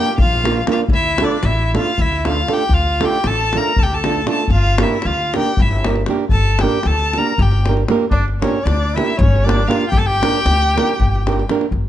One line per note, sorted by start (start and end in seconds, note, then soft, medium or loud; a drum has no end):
0.00 0.10 F4 medium
0.00 0.17 G4 medium
0.00 0.11 A#4 medium
0.00 0.16 G5 loud
0.08 davul high soft
0.18 0.61 A#1 loud
0.18 0.65 F4 medium
0.18 0.64 F5 loud
0.18 davul low medium
0.33 davul high soft
0.44 0.59 A#3 medium
0.44 0.59 D4 soft
0.44 0.60 F4 medium
0.44 0.60 A#4 medium
0.44 davul high medium
0.57 davul high soft
0.67 0.83 A#3 medium
0.67 0.83 D4 medium
0.67 0.83 F4 medium
0.67 0.80 F4 medium
0.67 0.83 A#4 medium
0.67 davul high medium
0.71 0.80 F5 medium
0.88 1.22 D2 medium
0.88 davul low medium
0.93 1.25 E4 medium
0.93 1.25 E5 loud
1.04 davul high soft
1.18 1.36 A3 medium
1.18 1.36 D4 medium
1.18 1.37 F4 medium
1.18 1.37 A4 medium
1.18 davul high medium
1.24 1.48 D4 medium
1.24 1.46 D5 medium
1.43 1.76 A1 loud
1.43 1.75 E4 medium
1.43 1.75 E5 loud
1.43 davul high medium
1.59 davul high soft
1.74 1.90 A3 medium
1.74 1.90 D4 soft
1.74 1.90 F4 medium
1.74 2.02 F4 medium
1.74 1.91 A4 medium
1.74 2.03 F5 loud
1.74 davul high medium
1.87 davul high soft
1.98 2.42 D2 loud
1.98 2.26 E4 medium
1.98 2.26 E5 medium
1.98 davul low medium
2.12 davul high soft
2.25 2.40 A3 medium
2.25 2.40 D4 soft
2.25 2.41 F4 medium
2.25 2.41 A4 medium
2.25 2.55 F5 medium
2.25 davul high medium
2.30 2.53 F4 medium
2.37 davul high soft
2.48 2.63 A3 medium
2.48 2.63 D4 medium
2.48 2.63 F4 medium
2.48 2.75 G4 medium
2.48 2.63 A4 medium
2.48 davul high medium
2.53 2.75 G5 medium
2.69 3.02 D2 medium
2.69 3.05 F4 medium
2.69 davul low medium
2.73 3.06 F5 medium
2.87 davul high soft
3.00 3.16 A3 medium
3.00 3.17 D4 medium
3.00 3.17 F4 medium
3.00 3.29 G4 medium
3.00 3.17 A4 medium
3.00 davul high medium
3.05 3.28 G5 loud
3.24 3.56 A1 loud
3.24 3.59 A4 medium
3.24 3.59 A5 loud
3.24 davul high medium
3.39 davul high soft
3.53 3.71 A3 medium
3.53 3.71 D4 medium
3.53 3.71 F4 medium
3.53 3.71 A4 medium
3.53 davul high medium
3.57 3.83 A#4 medium
3.57 3.80 A#5 loud
3.76 4.22 D2 medium
3.76 3.84 A5 loud
3.76 davul low medium
3.81 3.97 G4 medium
3.81 3.85 A4 medium
3.81 3.96 G5 medium
3.92 4.29 A4 medium
3.92 4.28 A5 medium
3.92 davul high soft
4.04 4.20 A3 medium
4.04 4.21 D4 soft
4.04 4.21 F4 medium
4.04 4.21 A4 medium
4.04 davul high medium
4.16 davul high soft
4.26 4.42 A3 medium
4.26 4.43 D4 medium
4.26 4.43 F4 medium
4.26 4.43 A4 medium
4.26 4.49 A4 medium
4.26 4.49 A5 medium
4.26 davul high medium
4.38 davul high soft
4.48 4.83 G1 medium
4.48 davul low medium
4.52 4.86 F4 medium
4.52 4.84 F5 loud
4.64 davul high soft
4.78 4.96 A#3 medium
4.78 4.96 D4 medium
4.78 4.97 G4 medium
4.78 4.97 A#4 medium
4.78 5.07 E5 medium
4.78 davul high medium
4.84 5.07 E4 medium
5.02 5.37 D2 medium
5.02 5.35 F4 medium
5.02 5.35 F5 medium
5.02 davul high medium
5.19 davul high soft
5.34 5.51 A#3 medium
5.34 5.51 D4 medium
5.34 5.51 G4 medium
5.34 5.61 G4 medium
5.34 5.51 A#4 medium
5.34 5.63 G5 medium
5.34 davul high medium
5.46 davul high soft
5.57 6.02 G1 loud
5.57 5.86 E4 medium
5.57 davul low medium
5.61 5.87 E5 medium
5.71 davul high soft
5.84 6.01 A#3 medium
5.84 6.01 D4 medium
5.84 6.01 G4 soft
5.84 6.02 A#4 medium
5.84 davul high medium
5.96 davul high soft
6.06 6.23 A#3 medium
6.06 6.24 D4 medium
6.06 6.24 G4 medium
6.06 6.24 A#4 medium
6.06 davul high medium
6.29 6.63 G1 medium
6.29 6.63 A4 medium
6.29 6.62 A5 loud
6.29 davul low medium
6.44 davul high soft
6.59 6.77 A#3 medium
6.59 6.78 D4 medium
6.59 6.88 G4 medium
6.59 6.88 G5 medium
6.59 davul high medium
6.63 6.78 G4 medium
6.63 6.78 A#4 medium
6.83 7.18 D2 medium
6.83 7.20 A4 medium
6.83 7.19 A5 loud
6.83 davul high medium
7.00 davul high soft
7.13 7.32 A#3 medium
7.13 davul high medium
7.18 7.32 D4 soft
7.18 7.33 G4 medium
7.18 7.42 A#4 medium
7.18 7.33 A#4 medium
7.18 7.44 A#5 medium
7.27 davul high soft
7.38 7.82 G1 loud
7.38 7.67 G4 medium
7.38 davul low medium
7.42 7.68 G5 medium
7.51 davul high soft
7.66 7.82 A#3 soft
7.66 7.82 D4 soft
7.66 7.83 G4 soft
7.66 7.83 A#4 medium
7.66 davul high medium
7.77 davul high soft
7.88 8.04 A#3 medium
7.88 8.04 D4 medium
7.88 8.05 G4 medium
7.88 8.05 A#4 medium
7.88 davul high medium
8.11 8.44 G1 medium
8.11 8.24 D4 loud
8.11 8.25 D5 medium
8.11 davul low medium
8.28 davul high soft
8.40 8.57 A#3 medium
8.40 8.67 C#4 medium
8.40 8.58 D4 medium
8.40 8.58 G4 medium
8.40 8.58 A#4 medium
8.40 8.65 C#5 medium
8.40 davul high medium
8.63 8.98 D2 loud
8.63 8.95 D4 medium
8.63 8.97 D5 loud
8.63 davul high medium
8.83 davul high soft
8.94 9.12 A#3 medium
8.94 9.12 D4 medium
8.94 9.23 E4 medium
8.94 9.12 G4 medium
8.94 9.19 E5 medium
8.94 davul high medium
8.99 9.13 A#4 medium
9.10 davul high soft
9.17 9.62 G1 loud
9.17 9.47 C#4 medium
9.17 9.45 C#5 loud
9.22 davul low loud
9.36 davul high soft
9.44 9.61 A#3 medium
9.44 9.71 D4 medium
9.44 9.62 D4 medium
9.44 9.62 G4 medium
9.44 9.62 A#4 medium
9.44 9.69 D5 loud
9.49 davul high medium
9.59 davul high soft
9.68 9.84 A#3 medium
9.68 9.84 D4 medium
9.68 9.90 F4 medium
9.68 9.84 G4 medium
9.68 9.85 A#4 medium
9.68 9.88 F5 medium
9.68 davul high medium
9.89 10.24 G1 medium
9.89 9.99 G4 loud
9.89 10.00 G5 loud
9.93 davul low medium
9.97 10.08 A4 medium
9.97 10.07 A5 medium
10.06 11.49 G4 loud
10.06 11.48 G5 loud
10.06 davul high soft
10.22 10.38 A#3 medium
10.22 10.38 D4 medium
10.22 10.39 G4 medium
10.22 10.39 A#4 medium
10.22 davul high medium
10.36 davul high soft
10.45 10.78 D2 loud
10.45 davul high medium
10.62 davul high soft
10.76 10.92 A#3 medium
10.76 10.92 D4 medium
10.76 10.93 G4 medium
10.76 10.93 A#4 medium
10.76 davul high medium
10.89 davul high soft
11.00 11.43 G1 medium
11.00 davul low medium
11.16 davul high soft
11.27 11.42 A#3 medium
11.27 11.43 D4 soft
11.27 11.43 G4 medium
11.27 11.43 A#4 medium
11.27 davul high medium
11.39 davul high soft
11.49 11.65 A#3 medium
11.49 11.65 D4 medium
11.49 11.65 G4 medium
11.49 11.66 A#4 medium
11.49 davul high medium
11.61 davul high soft
11.71 11.89 G1 medium
11.71 davul low medium